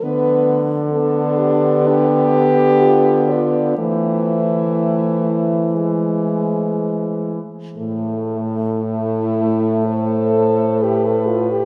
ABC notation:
X:1
M:4/4
L:1/16
Q:1/4=61
K:Am
V:1 name="French horn"
B2 z2 A2 G6 F2 d2 | c12- c2 z2 | z8 c4 B4 |]
V:2 name="French horn"
z4 D4 G6 F2 | E12 z4 | z4 E4 A4 G A F G |]
V:3 name="French horn"
B,4 B,12 | A,8 ^G,6 z2 | A,16 |]
V:4 name="French horn" clef=bass
D,16 | E,12- E,2 z2 | A,,16 |]